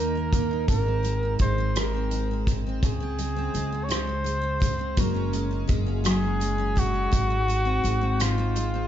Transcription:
0.00 0.65 D#2 medium
0.00 2.82 D#3 medium
0.00 0.32 A#3 medium
0.00 0.15 D#4 soft
0.00 0.69 A#4 medium
0.15 0.51 D#4 medium
0.33 0.76 A#3 soft
0.33 kick medium
0.33 closed hi-hat medium
0.51 0.86 D#4 medium
0.68 1.36 G#1 loud
0.68 1.75 G#2 medium
0.68 1.36 A#4 medium
0.68 kick medium
0.68 closed hi-hat medium
0.86 1.22 C4 soft
1.03 1.40 G#3 soft
1.03 closed hi-hat soft
1.23 1.58 C4 soft
1.39 2.79 G#1 medium
1.39 2.11 G#3 medium
1.39 1.79 C5 medium
1.39 kick medium
1.39 closed hi-hat medium
1.58 1.94 C4 soft
1.76 2.90 G#2 medium
1.76 2.57 A#4 medium
1.76 cross-stick loud
1.76 closed hi-hat medium
1.94 2.31 C4 soft
2.11 2.48 G#3 soft
2.11 closed hi-hat soft
2.31 2.66 C4 soft
2.47 3.18 G#3 soft
2.47 kick medium
2.47 closed hi-hat medium
2.66 3.00 C4 soft
2.83 3.51 C#2 medium
2.83 3.87 C#3 medium
2.83 3.86 G#4 medium
2.83 kick medium
2.83 closed hi-hat medium
3.00 3.35 C4 medium
3.18 3.54 G#3 soft
3.18 closed hi-hat soft
3.36 3.71 C4 medium
3.54 4.94 C#2 medium
3.54 4.24 G#3 soft
3.54 closed hi-hat soft
3.72 4.06 C4 soft
3.84 3.93 C#5 medium
3.89 5.04 C#3 medium
3.89 5.01 C5 medium
3.89 cross-stick medium
3.89 closed hi-hat medium
4.07 4.40 C4 soft
4.24 4.60 G#3 soft
4.24 closed hi-hat soft
4.42 4.78 C4 soft
4.60 5.32 G#3 medium
4.60 kick medium
4.60 closed hi-hat medium
4.79 5.04 C4 medium
4.97 5.65 F#1 medium
4.97 6.03 F#3 medium
4.97 5.70 A#4 medium
4.97 kick medium
4.97 closed hi-hat medium
5.14 5.50 C#4 medium
5.33 5.67 G#3 medium
5.33 closed hi-hat medium
5.51 5.85 C#4 soft
5.68 7.08 F#1 medium
5.68 6.40 G#3 medium
5.68 kick medium
5.68 closed hi-hat medium
5.86 6.21 C#4 soft
6.04 7.33 F#3 medium
6.04 6.81 G#4 medium
6.04 cross-stick loud
6.04 closed hi-hat medium
6.22 6.57 C#4 medium
6.40 6.75 G#3 soft
6.40 closed hi-hat soft
6.58 6.93 C#4 medium
6.76 7.48 G#3 medium
6.76 8.24 F#4 loud
6.76 kick medium
6.76 closed hi-hat medium
6.94 7.19 C#4 medium
7.12 7.80 G#1 medium
7.12 8.18 G#2 medium
7.12 kick medium
7.12 closed hi-hat medium
7.30 7.64 C4 medium
7.48 7.83 G#3 soft
7.48 closed hi-hat soft
7.65 8.00 C4 medium
7.84 8.88 G#1 medium
7.84 8.55 G#3 medium
7.84 closed hi-hat medium
8.01 8.37 C4 soft
8.20 8.88 G#2 medium
8.20 8.88 F4 medium
8.20 cross-stick loud
8.20 closed hi-hat medium
8.38 8.73 C4 medium
8.56 8.88 G#3 medium
8.56 closed hi-hat soft
8.74 8.88 C4 soft

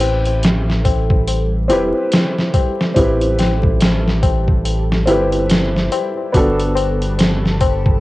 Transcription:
0.00 1.71 A1 loud
0.00 8.00 G3 medium
0.00 1.65 C4 medium
0.00 1.65 E4 medium
0.00 1.66 G4 medium
0.00 8.00 A4 medium
0.00 1.67 B4 medium
0.00 closed hi-hat medium
0.00 tabla na medium
0.25 closed hi-hat soft
0.25 tabla na soft
0.43 snare loud
0.43 closed hi-hat medium
0.43 tabla na soft
0.68 snare soft
0.68 tabla na soft
0.85 kick medium
0.85 closed hi-hat medium
0.85 tabla na medium
1.10 kick medium
1.10 tabla na soft
1.27 closed hi-hat medium
1.27 tabla na soft
1.53 tabla na soft
1.68 1.92 E1 medium
1.68 2.91 C4 medium
1.68 2.92 E4 medium
1.68 2.93 G4 medium
1.68 closed hi-hat medium
1.68 tabla na medium
1.72 2.94 B4 medium
1.94 tabla na soft
2.12 snare loud
2.12 closed hi-hat medium
2.12 tabla na soft
2.38 snare soft
2.38 tabla na soft
2.54 kick medium
2.54 closed hi-hat medium
2.54 tabla na medium
2.79 snare soft
2.79 tabla na soft
2.94 5.09 A1 loud
2.94 5.03 C4 medium
2.94 5.03 E4 medium
2.94 5.04 G4 medium
2.94 kick loud
2.94 closed hi-hat medium
2.94 tabla na soft
2.99 5.05 B4 medium
3.21 closed hi-hat soft
3.21 tabla na soft
3.39 snare soft
3.39 closed hi-hat medium
3.39 tabla na medium
3.63 kick medium
3.63 tabla na soft
3.81 snare loud
3.81 closed hi-hat medium
3.81 tabla na soft
4.07 snare soft
4.07 tabla na soft
4.23 kick medium
4.23 closed hi-hat medium
4.23 tabla na medium
4.48 kick medium
4.48 tabla na soft
4.65 closed hi-hat medium
4.65 tabla na soft
4.90 snare soft
4.90 tabla na soft
5.06 5.89 G1 medium
5.06 6.29 C4 medium
5.06 6.30 E4 medium
5.06 6.31 G4 medium
5.06 closed hi-hat medium
5.06 tabla na medium
5.10 6.32 B4 medium
5.32 closed hi-hat soft
5.32 tabla na soft
5.49 snare loud
5.49 closed hi-hat medium
5.49 tabla na soft
5.75 snare soft
5.75 tabla na soft
5.92 closed hi-hat medium
5.92 tabla na medium
6.17 tabla na soft
6.32 8.00 G1 loud
6.32 8.00 B3 medium
6.32 8.00 D4 medium
6.32 8.00 F#4 medium
6.32 kick loud
6.32 closed hi-hat medium
6.32 tabla na soft
6.37 8.00 A4 medium
6.59 closed hi-hat soft
6.59 tabla na soft
6.75 closed hi-hat medium
6.75 tabla na medium
7.01 closed hi-hat soft
7.01 tabla na soft
7.18 snare loud
7.18 closed hi-hat medium
7.18 tabla na soft
7.44 snare soft
7.44 tabla na soft
7.61 kick medium
7.61 closed hi-hat medium
7.61 tabla na medium
7.86 kick medium
7.86 tabla na soft

